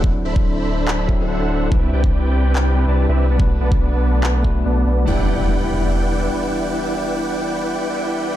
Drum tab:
CP |--------x-------|--------x-------|--------x-------|----------------|
BD |o--o------o-----|o--o------------|o--o------o-----|----------------|

CP |----------------|
BD |----------------|